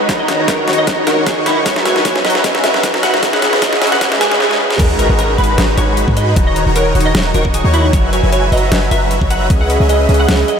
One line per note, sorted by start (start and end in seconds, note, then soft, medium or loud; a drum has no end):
0.00 1.82 A#4 medium
0.00 riser medium
0.09 0.37 D#3 medium
0.09 0.37 D#4 medium
0.09 0.28 F#4 medium
0.09 0.37 F#4 medium
0.09 0.37 C#5 medium
0.09 0.37 A#5 medium
0.09 kick loud
0.09 snare medium
0.09 closed hi-hat medium
0.19 0.78 D#5 medium
0.19 0.37 D#5 medium
0.28 0.48 F#4 loud
0.28 snare medium
0.28 closed hi-hat medium
0.39 0.66 D#1 medium
0.39 0.66 D#3 medium
0.39 0.66 D#4 medium
0.39 0.66 F#4 medium
0.39 0.58 C#5 medium
0.39 0.66 C#5 medium
0.39 0.66 A#5 medium
0.48 0.67 F#4 loud
0.48 0.66 A#4 medium
0.48 kick medium
0.48 snare medium
0.48 closed hi-hat medium
0.59 0.97 C#5 medium
0.68 0.85 D#3 medium
0.68 0.85 D#4 medium
0.68 0.87 F#4 medium
0.68 0.85 F#4 medium
0.68 0.85 C#5 medium
0.68 0.85 C#6 loud
0.68 snare medium
0.68 closed hi-hat soft
0.73 closed hi-hat medium
0.78 0.96 D#5 medium
0.78 1.37 D#5 medium
0.87 1.05 D#3 medium
0.87 1.05 D#4 medium
0.87 1.06 F#4 loud
0.87 1.05 F#4 medium
0.87 1.05 C#5 medium
0.87 1.05 A#5 medium
0.87 kick medium
0.87 snare medium
0.87 closed hi-hat medium
0.98 1.17 C#5 medium
1.07 1.35 D#3 medium
1.07 1.35 D#4 medium
1.07 1.26 F#4 loud
1.07 1.35 F#4 medium
1.07 1.19 A#4 medium
1.07 1.35 C#5 medium
1.07 1.35 C#6 medium
1.07 snare medium
1.07 closed hi-hat medium
1.17 1.56 C#5 medium
1.26 1.46 F#4 medium
1.26 1.39 G#4 medium
1.26 kick medium
1.26 snare medium
1.26 closed hi-hat medium
1.37 1.64 D#3 medium
1.37 1.64 D#4 medium
1.37 1.64 F#4 medium
1.37 1.64 C#5 medium
1.37 3.15 D#5 medium
1.37 1.64 C#6 loud
1.46 1.58 E4 medium
1.46 1.65 F#4 loud
1.46 snare medium
1.46 closed hi-hat medium
1.57 1.95 C#5 medium
1.66 1.93 F#3 medium
1.66 1.85 F#4 loud
1.66 1.94 F#4 medium
1.66 1.93 B4 medium
1.66 1.78 C#5 loud
1.66 1.93 E5 medium
1.66 1.94 G#5 medium
1.66 kick loud
1.66 snare medium
1.66 closed hi-hat medium
1.76 2.15 B4 medium
1.76 snare medium
1.85 2.05 F#4 medium
1.85 1.98 C#5 medium
1.85 snare loud
1.85 closed hi-hat medium
1.96 2.22 F#3 medium
1.96 2.22 F#4 medium
1.96 2.22 B4 medium
1.96 2.54 C#5 medium
1.96 2.22 E5 medium
1.96 2.22 G#5 medium
1.96 snare medium
2.05 2.24 F#4 loud
2.05 2.17 C#5 medium
2.05 kick loud
2.05 snare medium
2.05 closed hi-hat medium
2.16 2.35 B4 medium
2.16 snare medium
2.25 2.43 F#1 medium
2.25 2.42 F#3 medium
2.25 2.44 F#4 loud
2.25 2.42 F#4 medium
2.25 2.42 B4 medium
2.25 2.48 D#5 medium
2.25 2.42 E5 medium
2.25 2.42 A#5 loud
2.25 snare medium
2.25 closed hi-hat soft
2.30 closed hi-hat medium
2.35 2.74 B4 medium
2.35 snare medium
2.44 2.62 F#3 medium
2.44 2.63 F#4 medium
2.44 2.62 F#4 medium
2.44 2.62 B4 medium
2.44 2.62 E5 medium
2.44 2.62 G#5 medium
2.44 kick medium
2.44 snare loud
2.44 closed hi-hat medium
2.55 3.13 C#5 medium
2.55 snare medium
2.64 2.91 F#3 medium
2.64 2.83 F#4 loud
2.64 2.91 F#4 medium
2.64 2.91 B4 medium
2.64 2.87 E5 medium
2.64 2.91 E5 medium
2.64 2.91 A#5 medium
2.64 snare loud
2.64 closed hi-hat medium
2.74 2.93 B4 medium
2.74 snare medium
2.83 3.02 F#4 loud
2.83 kick loud
2.83 snare loud
2.83 closed hi-hat medium
2.94 3.20 F#3 medium
2.94 3.20 F#4 medium
2.94 3.20 B4 medium
2.94 4.59 B4 medium
2.94 3.20 E5 medium
2.94 3.20 A#5 loud
2.94 snare medium
3.03 4.79 F#4 medium
3.03 3.21 F#5 loud
3.03 snare loud
3.03 closed hi-hat medium
3.13 3.33 C#5 medium
3.13 snare medium
3.23 3.50 C#4 medium
3.23 3.42 G#4 loud
3.23 3.50 G#4 medium
3.23 3.50 B4 medium
3.23 3.50 D#5 medium
3.23 3.50 E5 medium
3.23 kick loud
3.23 snare loud
3.23 closed hi-hat medium
3.33 3.52 C#5 medium
3.33 3.51 F#5 medium
3.33 snare medium
3.42 3.61 G#4 loud
3.42 snare loud
3.42 closed hi-hat medium
3.53 3.80 C#2 loud
3.53 3.79 C#4 medium
3.53 3.79 G#4 medium
3.53 3.79 B4 medium
3.53 3.91 C#5 medium
3.53 3.79 D#5 medium
3.53 3.79 E5 loud
3.53 snare medium
3.62 3.81 G#4 medium
3.62 3.80 D#5 medium
3.62 kick loud
3.62 snare loud
3.62 closed hi-hat medium
3.72 4.40 D#5 medium
3.72 snare medium
3.81 3.99 C#2 loud
3.81 3.99 C#4 medium
3.81 4.01 G#4 loud
3.81 3.99 G#4 medium
3.81 3.99 B4 medium
3.81 3.99 D#5 medium
3.81 3.99 E5 loud
3.81 snare loud
3.81 closed hi-hat medium
3.87 closed hi-hat medium
3.92 4.11 C#5 medium
3.92 4.09 F#5 medium
3.92 snare loud
4.01 4.19 C#4 medium
4.01 4.20 G#4 loud
4.01 4.19 G#4 medium
4.01 4.19 B4 medium
4.01 4.19 D#5 medium
4.01 4.19 E5 medium
4.01 kick loud
4.01 snare loud
4.01 closed hi-hat medium
4.01 swell medium
4.11 4.31 C#5 medium
4.11 snare loud
4.21 4.50 G#4 medium
4.21 4.33 G#5 medium
4.21 snare loud
4.21 closed hi-hat medium
4.31 4.70 C#5 medium
4.31 snare medium
4.40 6.19 D#5 medium
4.40 snare medium
4.51 6.78 G#4 medium
4.51 snare medium
4.60 4.96 B4 loud
4.70 6.47 C#5 medium
4.70 snare medium
4.79 5.08 G#1 medium
4.79 5.07 G#3 medium
4.79 5.07 D#4 medium
4.79 4.99 F#4 loud
4.79 5.07 F#4 medium
4.79 4.92 A#4 loud
4.79 5.07 B4 medium
4.79 5.07 A#5 medium
4.79 kick loud
4.79 closed hi-hat medium
4.79 crash loud
4.79 sub drop medium
4.90 5.16 A#4 medium
4.99 5.18 F#4 medium
4.99 5.11 A#4 medium
4.99 closed hi-hat medium
5.10 5.37 G#1 medium
5.10 5.36 G#3 medium
5.10 5.36 D#4 medium
5.10 5.36 F#4 medium
5.10 5.35 B4 medium
5.10 5.36 B4 medium
5.10 5.36 A#5 loud
5.18 5.38 F#4 loud
5.18 5.31 A#4 medium
5.18 closed hi-hat medium
5.29 5.49 A#4 medium
5.38 5.56 G#1 loud
5.38 5.56 G#3 medium
5.38 5.56 D#4 medium
5.38 5.58 F#4 loud
5.38 5.56 F#4 medium
5.38 5.62 B4 medium
5.38 5.56 B4 medium
5.38 5.56 B5 loud
5.38 closed hi-hat soft
5.44 closed hi-hat medium
5.49 5.75 A#4 medium
5.58 5.76 G#1 loud
5.58 5.75 G#3 medium
5.58 5.75 D#4 medium
5.58 5.75 F#4 medium
5.58 5.77 F#4 medium
5.58 5.75 B4 medium
5.58 5.75 A#5 medium
5.58 snare loud
5.58 closed hi-hat medium
5.69 5.94 B4 medium
5.77 6.06 G#1 medium
5.77 6.05 G#3 medium
5.77 6.05 D#4 medium
5.77 5.97 F#4 loud
5.77 6.05 F#4 medium
5.77 6.05 B4 medium
5.77 6.01 C#5 medium
5.77 6.05 B5 medium
5.77 closed hi-hat medium
5.88 6.07 A#4 medium
5.97 6.16 F#4 loud
5.97 closed hi-hat medium
6.08 6.35 G#2 loud
6.08 6.34 G#3 medium
6.08 6.34 D#4 medium
6.08 6.34 F#4 medium
6.08 6.33 A#4 medium
6.08 6.34 B4 medium
6.08 6.34 B5 loud
6.08 kick medium
6.17 6.36 F#4 medium
6.17 6.35 D#5 loud
6.17 closed hi-hat medium
6.27 8.23 B4 medium
6.36 6.64 D#1 medium
6.36 6.64 D#3 medium
6.36 6.64 D#4 medium
6.36 6.64 F#4 medium
6.36 6.56 F#4 loud
6.36 6.64 C#5 medium
6.36 6.64 A#5 medium
6.36 kick loud
6.36 closed hi-hat medium
6.47 6.66 C#5 medium
6.47 6.64 D#5 medium
6.56 6.75 F#4 loud
6.56 closed hi-hat medium
6.66 6.93 D#1 loud
6.66 6.93 D#3 medium
6.66 6.93 D#4 medium
6.66 6.93 F#4 medium
6.66 6.93 C#5 medium
6.66 7.05 C#5 medium
6.66 6.93 A#5 loud
6.76 6.95 F#4 medium
6.76 6.93 A#4 medium
6.76 closed hi-hat medium
6.86 7.45 D#5 medium
6.95 7.13 D#1 loud
6.95 7.13 D#3 medium
6.95 7.13 D#4 medium
6.95 7.13 F#4 medium
6.95 7.14 F#4 loud
6.95 7.13 C#5 medium
6.95 7.13 C#6 loud
6.95 closed hi-hat soft
7.01 closed hi-hat medium
7.06 7.25 C#5 medium
7.06 7.23 D#5 medium
7.15 7.33 D#1 loud
7.15 7.32 D#3 medium
7.15 7.32 D#4 medium
7.15 7.34 F#4 loud
7.15 7.32 F#4 medium
7.15 7.32 C#5 medium
7.15 7.32 A#5 medium
7.15 snare loud
7.15 closed hi-hat medium
7.25 7.64 C#5 medium
7.34 7.62 D#1 medium
7.34 7.62 D#3 medium
7.34 7.62 D#4 medium
7.34 7.62 F#4 medium
7.34 7.54 F#4 medium
7.34 7.47 A#4 medium
7.34 7.62 C#5 medium
7.34 7.62 C#6 medium
7.34 closed hi-hat medium
7.45 9.23 D#5 medium
7.45 kick medium
7.54 7.73 F#4 loud
7.54 7.66 G#4 medium
7.54 closed hi-hat medium
7.64 7.91 D#2 loud
7.64 7.91 D#3 medium
7.64 7.91 D#4 medium
7.64 7.91 F#4 medium
7.64 7.84 C#5 medium
7.64 7.91 C#5 medium
7.64 7.91 C#6 loud
7.73 7.86 E4 medium
7.73 7.93 F#4 loud
7.73 closed hi-hat medium
7.84 8.03 C#5 medium
7.93 8.21 F#1 medium
7.93 8.21 F#3 medium
7.93 8.21 F#4 medium
7.93 8.21 B4 medium
7.93 8.06 C#5 loud
7.93 8.21 E5 medium
7.93 8.21 G#5 medium
7.93 kick loud
7.93 closed hi-hat medium
8.04 8.62 C#5 medium
8.13 8.32 F#4 loud
8.13 8.25 C#5 medium
8.13 closed hi-hat medium
8.23 8.50 F#1 loud
8.23 8.50 F#3 medium
8.23 8.50 F#4 medium
8.23 8.43 B4 medium
8.23 8.50 B4 medium
8.23 8.50 E5 medium
8.23 8.50 G#5 loud
8.32 8.52 F#4 loud
8.32 8.45 C#5 medium
8.32 closed hi-hat medium
8.43 8.82 B4 medium
8.52 8.70 F#1 medium
8.52 8.70 F#3 medium
8.52 8.70 F#4 medium
8.52 8.71 F#4 medium
8.52 8.70 B4 medium
8.52 8.76 D#5 medium
8.52 8.70 E5 medium
8.52 8.70 A#5 loud
8.52 closed hi-hat soft
8.57 closed hi-hat medium
8.63 9.21 C#5 medium
8.72 8.90 F#1 loud
8.72 8.89 F#3 medium
8.72 8.89 F#4 medium
8.72 8.91 F#4 loud
8.72 8.89 B4 medium
8.72 8.89 E5 medium
8.72 8.89 G#5 medium
8.72 snare loud
8.72 closed hi-hat medium
8.82 9.02 B4 medium
8.91 9.19 F#1 loud
8.91 9.19 F#3 medium
8.91 9.19 F#4 medium
8.91 9.11 F#4 loud
8.91 9.19 B4 medium
8.91 9.19 E5 medium
8.91 9.15 E5 medium
8.91 9.19 A#5 medium
8.91 closed hi-hat medium
9.02 9.41 B4 medium
9.11 9.30 F#4 medium
9.11 closed hi-hat medium
9.21 9.48 F#1 loud
9.21 9.48 F#3 medium
9.21 9.48 F#4 medium
9.21 9.48 B4 medium
9.21 9.60 C#5 medium
9.21 9.48 E5 medium
9.21 9.48 A#5 loud
9.21 kick medium
9.30 10.60 F#4 loud
9.30 9.48 F#5 medium
9.30 closed hi-hat medium
9.41 10.60 B4 medium
9.50 9.78 C#2 loud
9.50 9.78 C#4 medium
9.50 9.78 G#4 medium
9.50 9.69 G#4 loud
9.50 9.78 B4 medium
9.50 9.78 D#5 medium
9.50 9.78 E5 medium
9.50 kick loud
9.50 closed hi-hat medium
9.61 10.00 C#5 medium
9.61 9.78 F#5 loud
9.70 9.89 G#4 medium
9.70 closed hi-hat medium
9.80 10.07 C#2 medium
9.80 10.07 C#4 medium
9.80 10.07 G#4 medium
9.80 10.07 B4 medium
9.80 10.07 D#5 medium
9.80 10.39 D#5 medium
9.80 10.07 E5 loud
9.89 10.09 G#4 loud
9.89 10.07 D#5 medium
9.89 closed hi-hat medium
10.00 10.19 C#5 medium
10.09 10.27 C#2 loud
10.09 10.26 C#4 medium
10.09 10.26 G#4 medium
10.09 10.28 G#4 loud
10.09 10.26 B4 medium
10.09 10.26 D#5 medium
10.09 10.26 E5 loud
10.09 closed hi-hat soft
10.14 closed hi-hat medium
10.20 10.58 C#5 medium
10.20 10.37 F#5 medium
10.29 10.44 C#2 loud
10.29 10.46 C#4 medium
10.29 10.46 G#4 medium
10.29 10.48 G#4 medium
10.29 10.46 B4 medium
10.29 10.46 D#5 medium
10.29 10.46 E5 medium
10.29 snare loud
10.29 closed hi-hat medium
10.39 10.60 D#5 medium
10.48 10.60 G#4 loud
10.48 10.60 D#5 medium
10.48 closed hi-hat medium